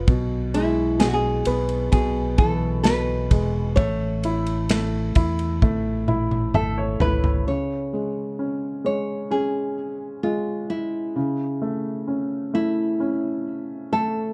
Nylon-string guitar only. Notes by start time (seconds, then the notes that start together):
0.54 E4
1.00 G#4
1.07 F#4
1.13 G#4
1.92 G#4
2.38 A4
2.83 B4
3.76 C#5
6.55 A4
7.01 B4
7.48 C#5
8.86 C#5
9.31 G#4
10.23 F4
10.70 E4
12.55 E4
13.93 A4